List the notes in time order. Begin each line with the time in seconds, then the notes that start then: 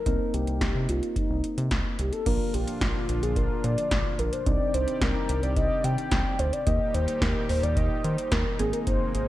Already playing: A#4
0.06 C2 A#3 C4 D#4, kick, closed hi-hat
0.34 C2 G4, closed hi-hat
0.47 C2, closed hi-hat
0.61 C2, kick, snare, closed hi-hat
0.75 C3
0.89 C2 F4, closed hi-hat
1.03 closed hi-hat
1.16 D#4, kick, closed hi-hat
1.30 C2
1.44 closed hi-hat
1.58 C3, closed hi-hat
1.71 C2, kick, snare, closed hi-hat
1.99 C2 G4, closed hi-hat
2.13 A4, closed hi-hat
2.26 A#1 A#2 D3 F3 A#3 D4 F4 A#4, kick, closed hi-hat, crash
2.54 A#1 G4, closed hi-hat
2.68 closed hi-hat
2.81 A#1 F4, kick, snare, closed hi-hat
3.09 A#1, closed hi-hat
3.23 A#1 G#4, closed hi-hat
3.36 A#1 A#4, kick, closed hi-hat
3.64 A#2 D5, closed hi-hat
3.78 closed hi-hat
3.91 A#1, kick, snare, closed hi-hat
4.19 A#1 A#4, closed hi-hat
4.33 C5, closed hi-hat
4.46 C2 C3 D#3 G3 C4 D4 D#4 G4 D5, kick, closed hi-hat
4.74 C2 C5, closed hi-hat
4.88 closed hi-hat
5.01 C2 A#4, kick, snare, closed hi-hat
5.29 C2, closed hi-hat
5.43 C2 D5, closed hi-hat
5.56 C2 D#5, kick, closed hi-hat
5.84 C3 G5, closed hi-hat
5.98 closed hi-hat
6.11 C2, kick, snare, closed hi-hat
6.39 D2 C5, closed hi-hat
6.53 D5, closed hi-hat
6.67 D#2 A#2 G3 A#3 D#4 G4 D#5, kick, closed hi-hat
6.94 D#2 C5, closed hi-hat
7.08 closed hi-hat
7.22 D#2 A#4, kick, snare, closed hi-hat
7.49 D#2 C5, open hi-hat
7.63 D#2 D5, closed hi-hat
7.77 D#2 D#5, kick, closed hi-hat
8.04 D#3 C5, closed hi-hat
8.18 closed hi-hat
8.32 D#2 A#4, kick, snare, closed hi-hat
8.59 G#1 C3 G#3 A#3 C4 G#4, closed hi-hat
8.73 A#4, closed hi-hat
8.87 G#1 C5, kick, closed hi-hat
9.14 G#1 C5, closed hi-hat